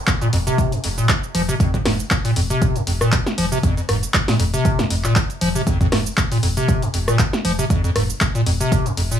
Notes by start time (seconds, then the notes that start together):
Already playing: downlifter
0.07 kick, clap, closed hi-hat, shaker
0.21 A#2, closed hi-hat, shaker
0.33 F1 F2, open hi-hat
0.47 C3, closed hi-hat, shaker
0.58 kick, closed hi-hat, shaker
0.72 F2, closed hi-hat, shaker
0.84 F1 F2, open hi-hat
0.98 A#2, shaker
1.09 kick, clap, closed hi-hat, shaker
1.24 shaker
1.35 F1 F3, open hi-hat
1.49 C3, shaker
1.60 F2, kick, closed hi-hat, shaker
1.74 F2, kick, closed hi-hat, shaker
1.85 F1 G#2, cross-stick, snare, open hi-hat
2.00 shaker
2.11 kick, clap, closed hi-hat, shaker
2.25 A#2, open hi-hat, shaker
2.36 F1 F2, open hi-hat
2.50 C3, closed hi-hat, shaker
2.62 kick, closed hi-hat, shaker
2.76 F2, closed hi-hat, shaker
2.87 F1 F2, open hi-hat
3.01 A#2, cross-stick, shaker
3.12 kick, clap, closed hi-hat, shaker
3.26 snare, shaker
3.38 F1 F3, open hi-hat
3.52 C3, shaker
3.63 F2, kick, closed hi-hat, shaker
3.77 F2, closed hi-hat, shaker
3.89 F1 G#2, cross-stick, open hi-hat
4.03 closed hi-hat, shaker
4.14 kick, clap, closed hi-hat, shaker
4.28 A#2, snare, open hi-hat, shaker
4.40 F1 F2, open hi-hat
4.54 C3, closed hi-hat, shaker
4.65 kick, closed hi-hat, shaker
4.79 F2, snare, closed hi-hat, shaker
4.90 F1 F2, open hi-hat
5.04 A#2, clap, shaker
5.16 kick, clap, closed hi-hat, shaker
5.30 closed hi-hat, shaker
5.41 F1 F3, open hi-hat
5.55 C3, shaker
5.67 F2, kick, closed hi-hat, shaker
5.81 F2, kick, closed hi-hat, shaker
5.92 F1 G#2, cross-stick, snare, open hi-hat
6.06 shaker
6.17 kick, clap, closed hi-hat, shaker
6.32 A#2, open hi-hat, shaker
6.43 F1 F2, open hi-hat
6.57 C3, closed hi-hat, shaker
6.68 kick, closed hi-hat, shaker
6.82 F2, closed hi-hat, shaker
6.94 F1 F2, open hi-hat
7.08 A#2, cross-stick, shaker
7.19 kick, clap, closed hi-hat, shaker
7.33 snare, shaker
7.45 F1 F3, open hi-hat
7.59 C3, shaker
7.70 F2, kick, closed hi-hat, shaker
7.84 F2, closed hi-hat, shaker
7.96 F1 G#2, cross-stick, open hi-hat
8.10 shaker
8.21 kick, clap, closed hi-hat, shaker
8.35 A#2, closed hi-hat, shaker
8.46 F1 F2, open hi-hat
8.60 C3, closed hi-hat, shaker
8.72 kick, closed hi-hat, shaker
8.86 F2, closed hi-hat, shaker
8.97 F1 F2, open hi-hat
9.11 A#2, shaker